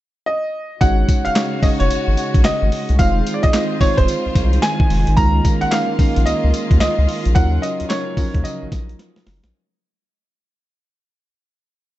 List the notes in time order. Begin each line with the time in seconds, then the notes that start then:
0.26 D#5
0.81 G#1 C#3 G#3 C#4 D#4 F#4 C#5 F#5, kick, closed hi-hat, tambourine
1.08 kick, closed hi-hat, tambourine
1.25 F#1 F5, closed hi-hat
1.36 G#3 C#4 D#4 F#4 C#5, snare, clap, closed hi-hat, tambourine
1.63 F#1 G#3 C#4 D#4 F#4 C#5 D#5, kick, open hi-hat, tambourine
1.80 F#1 C#5, closed hi-hat
1.90 G#1, closed hi-hat, tambourine
2.08 G#1
2.17 closed hi-hat, tambourine
2.34 A#1, kick, closed hi-hat
2.45 G#1 D#5, snare, clap, closed hi-hat, tambourine
2.62 G#1
2.72 open hi-hat
2.89 C2, closed hi-hat
2.99 F1 D#3 G#3 C4 D#4 F4 C5 F5, kick, closed hi-hat, tambourine
3.26 closed hi-hat, tambourine
3.34 D5
3.43 F1 D#5, kick, closed hi-hat
3.54 G#3 C4 D#4 F4 C5, snare, clap, closed hi-hat, tambourine
3.81 F1 G#3 C4 D#4 F4 C5 C#5, kick, open hi-hat, tambourine
3.97 F1 C5, kick, closed hi-hat
4.08 closed hi-hat, tambourine
4.26 C2
4.35 C2, kick, closed hi-hat, tambourine
4.53 closed hi-hat
4.62 G#5, snare, clap, closed hi-hat, tambourine
4.80 kick
4.90 F1, open hi-hat
5.07 G#1, closed hi-hat
5.17 C#2 G#3 A#3 C#4 D#4 F4 A#4 A#5, kick, closed hi-hat, tambourine
5.45 kick, closed hi-hat, tambourine
5.61 A#1 F#5, closed hi-hat
5.71 G#3 C#4 D#4 F4 A#4 F5, snare, clap, closed hi-hat, tambourine
5.99 A#1 G#3 C#4 D#4 F4 A#4, kick, open hi-hat, tambourine
6.16 A#1, closed hi-hat
6.26 C#2 D#5, closed hi-hat, tambourine
6.44 C#2
6.54 closed hi-hat, tambourine
6.71 D#2, kick, closed hi-hat
6.80 C#2 D#5, snare, clap, closed hi-hat, tambourine
6.99 C#2
7.09 open hi-hat
7.25 A#1, closed hi-hat
7.35 D#2 C#3 F#3 C#4 D#4 F4 A#4 F#5, kick, closed hi-hat, tambourine
7.62 D#5, closed hi-hat, tambourine
7.80 D#2, closed hi-hat
7.89 F#3 C#4 D#4 F4 A#4 C#5, snare, clap, closed hi-hat, tambourine
8.17 D#2 F3 C#4 D#4 F4 A#4, kick, open hi-hat, tambourine
8.24 F#3
8.34 D#2, kick, closed hi-hat
8.44 D#5, closed hi-hat, tambourine
8.62 A#1
8.72 A#1, kick, snare, closed hi-hat, tambourine
8.89 closed hi-hat
8.99 snare, closed hi-hat
9.16 snare
9.27 F#1, snare, open hi-hat
9.44 A#1, snare, closed hi-hat